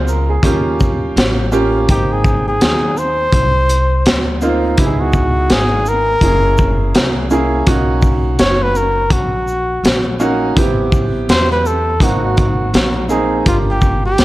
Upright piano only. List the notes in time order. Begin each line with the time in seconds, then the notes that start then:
Already playing: G#3 C4 C#4 F4
0.08 A#4
0.29 G#4
0.43 A#3 C#4 F4 G4
1.52 A#3 C#4 F4 G4
1.89 A#3 C4 D#4 G5
4.42 A#3 C4 D#4 F4
4.78 B3 D#4 E4 G4
4.86 G#4
6.22 A#3 C#4 E4 G#4
7.31 A#3 C#4 E4 G#4
7.66 A#3 C#4 D#4 F#4
10.19 A#3 C#4 D#4 F#4
10.56 B3 C4 E4 G4
12.01 A#3 C4 D#4 F#4
13.09 A#3 C4 D#4 G#4
13.46 A#3 D4 F4 G4